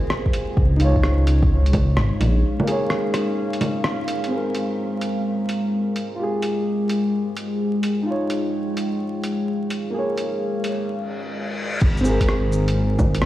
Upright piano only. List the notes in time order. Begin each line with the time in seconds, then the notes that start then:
Already playing: F4 G4 G#4
0.77 D#4
0.81 F4 C#5
2.63 A#3
2.67 G#4 C#5
4.27 C4 G#4
4.35 A#4
6.15 F4 G4
6.23 G#4
8.02 D#4 F4
8.10 C#5
9.90 A#3 G#4
9.98 C#5
12.01 C4
12.05 G#4 A#4